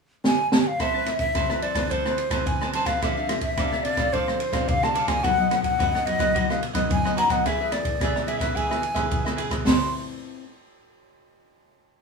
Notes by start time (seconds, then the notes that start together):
0.24 G#5, snare
0.52 A5, snare
0.61 G#5
0.67 F5
0.79 A3 C4 E4 A4 B4 C5 E5 A5, kick, cross-stick, ride
0.93 C4 E4 B4 C5 A5
1.06 muted cavaquinho stroke, cross-stick, ride
1.19 E5, kick, ride
1.34 E3 C4 E4 A4 B4 C5 A5, kick, cross-stick, ride
1.50 B4 C5 A5, cross-stick
1.62 C4 E4 A4 B4 C5 D5 A5, ride
1.75 B4 C5 A5, kick, cross-stick, ride
1.90 A3 C4 E4 A4 B4 C5 A5, kick, ride
2.06 B4 C5 A5, cross-stick
2.18 muted cavaquinho stroke, ride
2.30 C4 E4 B4 C5 A5, kick, cross-stick, ride
2.46 E3 G#5, kick, ride
2.61 B4 C5 A5, cross-stick
2.73 C4 E4 A4 B4 C5 A5, ride
2.86 B4 C5 F5 A5, kick, cross-stick, ride
3.02 F3 C4 D4 A4 D5 E5 F5, kick, cross-stick, ride
3.17 C4 D4 A4 D5 F5
3.29 muted cavaquinho stroke, cross-stick, ride
3.41 E5, kick, ride
3.57 C3 C4 D4 A4 D5 F5, kick, cross-stick, ride
3.72 A4 D5 F5, cross-stick
3.83 C4 D4 A4 D5 F5, ride
3.97 A4 D5 F5, kick, cross-stick, ride
4.13 F3 C4 D4 A4 C5 D5 F5, kick, ride
4.28 A4 D5 F5, cross-stick
4.40 muted cavaquinho stroke, ride
4.52 C4 D4 A4 D5 F5, kick, cross-stick, ride
4.68 C3 F5, kick, ride
4.82 A4 D5 F5 A5, cross-stick
4.94 C4 D4 A4 D5 F5, ride
5.08 A4 D5 F5 G#5, kick, cross-stick, ride
5.23 B2 F#3 B3 D#4 F#4 B4 D#5 F#5, kick, cross-stick, ride
5.37 F#3 B3 D#4 D#5 F#5
5.41 B4
5.51 muted cavaquinho stroke, cross-stick, ride
5.63 F#5, kick, ride
5.78 F#2 F#3 B3 D#4 F#4 B4 D#5 F#5, kick, cross-stick, ride
5.94 B4 D#5 F#5, cross-stick
6.06 F#3 B3 D#4 F#4 B4 D#5 F#5, ride
6.19 B4 D#5 F#5, kick, cross-stick, ride
6.34 B2 F#3 B3 D#4 F#4 B4 D#5 F#5, kick, ride
6.49 B4 D#5 F5 F#5, cross-stick
6.62 muted cavaquinho stroke, ride
6.73 F#3 B3 D#4 B4 D#5 F#5, kick, cross-stick, ride
6.89 F#2 G#5, kick, ride
7.05 B4 D#5 F#5, cross-stick
7.16 F#3 B3 D#4 F#4 B4 D#5 F#5 A#5, ride
7.30 B4 D#5 F#5, kick, cross-stick, ride
7.45 E3 B3 E4 G#4 B4 E5, kick, cross-stick, ride
7.60 B3 E4 G#4 B4 E5
7.72 D5, muted cavaquinho stroke, cross-stick, ride
7.85 kick, ride
8.00 B2 B3 E4 G#4 B4 E5, kick, cross-stick, ride
8.16 E5, cross-stick
8.26 B3 E4 G#4 B4 E5, ride
8.30 E5
8.39 G#4 B4 E5, kick, cross-stick, ride
8.54 E3 B3 E4 G#4 B4 E5 G#5, kick, ride
8.70 G#4 B4 E5, cross-stick
8.82 muted cavaquinho stroke, ride
8.94 B3 E4 G#4 B4 E5, kick, cross-stick, ride
9.10 B2, kick, ride
9.25 G#4 B4 E5, cross-stick
9.37 B3 E4 G#4 B4 E5, ride
9.51 G#4 B4 E5, kick, cross-stick, ride
9.65 A3 C4 E4 A4 B4 C5 A5 C6, kick, snare, open hi-hat